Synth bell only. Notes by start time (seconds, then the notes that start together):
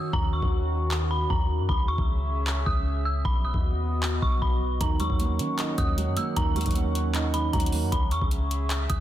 Already playing: E6
0.13 A#5
0.33 C#6
1.11 B5
1.30 A#5
1.69 B5
1.88 C#6
2.66 D#6
3.05 E6
3.25 B5
3.45 D#6
4.22 C#6
4.42 B5
4.81 A#5
5.00 C#6
5.78 D#6
6.17 E6
6.37 A#5
6.56 C#6
7.34 B5
7.53 A#5
7.92 B5
8.12 C#6
8.90 D#6